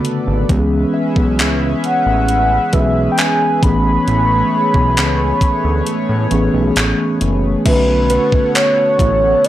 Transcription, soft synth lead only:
1.84 2.75 F#5 loud
2.74 3.11 E5 medium
3.12 3.20 G5 medium
3.18 3.64 G#5 loud
3.63 6.76 B5 loud
7.66 8.51 B4 loud
8.55 9.46 C#5 loud
9.45 9.48 D5 loud

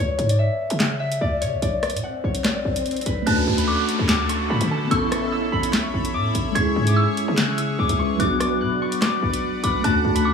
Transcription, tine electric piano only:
3.22 4.86 A3 medium
3.22 4.87 C#4 medium
3.28 4.89 D4 medium
3.28 4.90 F#4 medium
4.87 6.50 B3 medium
4.87 6.51 C#4 medium
4.93 6.53 E4 medium
4.93 6.54 A4 medium
6.51 7.94 G#3 medium
6.51 7.96 C#4 medium
6.57 7.97 E4 medium
6.57 7.99 G#4 medium
7.97 8.19 G#3 medium
7.97 8.19 C#4 soft
7.97 8.20 E4 soft
8.01 8.21 B4 medium
8.16 9.79 F#3 medium
8.16 9.80 B3 medium
8.21 9.82 D4 medium
8.21 9.83 F#4 medium
9.80 10.34 A3 medium
9.80 10.34 C#4 medium
9.86 10.34 D4 medium
9.86 10.34 F#4 medium

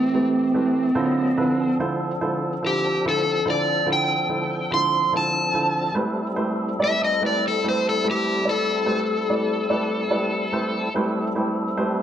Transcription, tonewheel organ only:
0.00 0.92 E3 medium
0.00 0.92 A3 medium
0.00 0.92 C4 medium
0.00 0.92 G4 medium
0.97 1.38 F#3 soft
0.97 1.38 A#3 medium
0.97 1.37 C4 soft
0.97 1.38 D#5 medium
1.38 5.92 F3 medium
1.38 5.90 C4 medium
1.38 5.92 D4 medium
1.38 5.91 A4 medium
5.91 10.89 G3 medium
5.91 10.89 C4 medium
5.91 10.90 E4 medium
5.91 10.90 A4 medium
10.94 12.02 G3 medium
10.94 12.02 C4 medium
10.94 12.02 E4 medium
10.94 12.02 A4 medium

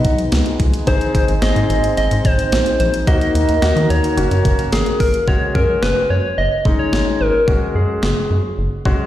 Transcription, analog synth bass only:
0.05 0.15 B1 loud
0.32 0.43 C#2 loud
0.60 0.70 C#2 loud
0.87 0.98 G#1 loud
1.15 1.25 G#1 loud
1.28 1.39 G#1 medium
1.42 1.53 G#1 loud
1.56 1.67 G#2 loud
1.70 1.80 G#1 loud
1.97 2.08 G#1 loud
2.11 2.22 G#2 loud
2.25 2.36 G#1 loud
2.52 2.63 A#1 loud
2.80 2.91 A#1 loud
3.07 3.18 D#2 loud
3.35 3.46 D#2 medium
3.49 3.59 D#2 medium
3.62 3.73 D#2 loud
3.76 3.87 D#3 loud
3.90 4.01 D#2 loud
4.18 4.28 F#1 loud
4.31 4.42 F#2 loud
4.45 4.56 F#1 loud
4.73 4.83 G#1 medium
5.00 5.11 G#1 loud
5.28 5.38 F#1 loud
5.55 5.66 F#2 medium
5.83 5.93 F#1 loud
6.10 6.21 F#2 loud
6.38 6.48 F#1 loud
6.65 6.76 F#1 loud
6.93 7.03 G#1 medium
7.20 7.31 G#1 medium
7.48 7.58 F#1 loud
7.75 7.86 F#2 medium
8.03 8.14 F#1 loud
8.30 8.41 F#2 loud
8.58 8.69 F#1 medium
8.86 8.96 F#1 loud

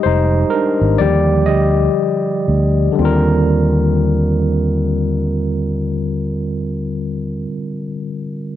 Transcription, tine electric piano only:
0.00 0.48 G3 medium
0.00 0.48 G#3 soft
0.00 0.06 D#4 medium
0.00 1.01 G4 medium
0.00 0.53 C5 medium
0.00 1.01 D#5 medium
0.06 0.50 D#4 medium
0.50 0.97 D4 medium
0.50 1.00 A#4 medium
0.98 2.44 D3 medium
0.98 2.43 F3 medium
0.98 2.43 G3 soft
0.98 1.46 G4 medium
0.98 1.49 D5 medium
1.46 2.44 G4 medium
1.46 2.42 D#5 medium
2.92 7.37 D3 medium
2.92 7.41 G3 medium
2.99 7.44 C4 medium
2.99 7.47 F4 medium
3.05 7.50 A#4 medium

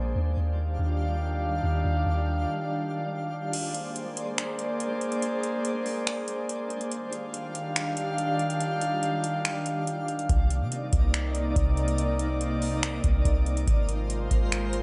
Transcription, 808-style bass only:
0.00 0.15 A#1 medium
0.15 0.36 D#2 loud
0.37 0.77 D#2 loud
0.79 1.60 D#2 loud
1.63 1.84 D#2 loud
1.84 2.05 D#2 loud
2.06 2.46 D#2 loud
10.29 10.63 C2 loud
10.61 10.91 C3 medium
10.93 11.54 C2 loud
11.56 13.00 C2 loud
13.04 13.24 C2 loud
13.25 13.66 C2 loud
13.68 14.28 G#1 loud
14.31 14.83 G#1 loud

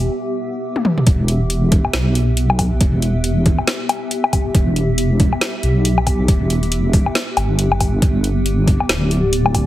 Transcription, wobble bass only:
1.07 1.83 E1 loud
1.94 2.79 B1 loud
2.81 3.57 E1 loud
4.55 5.31 E1 loud
5.63 6.27 B1 medium
6.28 7.05 E1 loud
7.37 8.01 G1 medium
8.02 8.79 G1 loud
8.89 9.66 D1 loud

